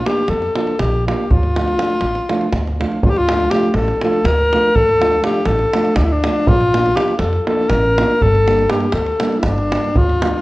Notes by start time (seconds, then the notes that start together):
0.06 F3 A#3 D4 F4 G4, davul high
0.17 davul high
0.28 F2 A4, davul high
0.42 davul high
0.55 F3 A#3 D4 F4 A4, davul high
0.67 davul high
0.79 A#1 G4, davul high, davul low
1.06 F3 A#3 D4 F4 G4, davul high
1.30 D2 F4, davul low
1.43 davul high
1.56 F3 A3 D4 F4, davul high
1.68 davul high
1.77 F3 A3 D4 F4, davul high
1.90 davul high
2.01 A1, davul high
2.15 davul high
2.29 F3 A3 D4 F4, davul high
2.41 davul high
2.52 D2, davul high, davul low
2.67 davul high
2.80 F3 A3 D4 F4, davul high
2.92 davul high
3.03 D2 F4, davul low
3.10 G4
3.16 F4, davul high
3.29 F3 A3 D4 F4, davul high
3.40 davul high
3.51 F3 A3 D4 F4 G4, davul high
3.63 davul high
3.74 A1 A4, davul high
3.88 davul high
4.01 F3 A3 D4 F4 A4, davul high
4.13 davul high
4.24 D2 A#4, davul high, davul low
4.52 F3 A3 D4 F4, davul high
4.75 D2 A4, davul low
4.89 davul high
4.99 F3 A3 D4 F4, davul high
5.13 davul high
5.23 F3 A3 D4 F4 G4, davul high
5.34 davul high
5.46 A1 A4, davul high
5.59 davul high
5.73 F3 A3 D4 F4, davul high
5.85 davul high
5.96 D2 D4, davul high, davul low
6.04 E4
6.12 D4
6.24 F3 A3 D4 F4, davul high
6.47 A#1 F4, davul low
6.61 davul high
6.74 F3 A#3 D4 F4, davul high
6.86 davul high
6.95 F3 A#3 D4 F4 G4, davul high
7.08 davul high
7.19 F2 A4, davul high
7.33 davul high
7.47 F3 A#3 D4 F4 A4, davul high
7.59 davul high
7.69 A1 A#4, davul high, davul low
7.98 F3 A#3 D4 F4, davul high
8.21 G1 A4, davul low
8.35 davul high
8.46 G3 A#3 D4 G4, davul high
8.59 davul high
8.69 G3 A#3 D4 G4, davul high
8.80 davul high
8.92 D2 A4, davul high
9.06 davul high
9.20 G3 A#3 D4 G4, davul high
9.32 davul high
9.39 E4, davul high, davul low
9.44 G1 D4
9.58 davul high
9.71 G3 A#3 D4 G4, davul high
9.84 davul high
9.95 D2 F4, davul low
10.09 davul high
10.22 F3 A3 D4 F4, davul high
10.34 davul high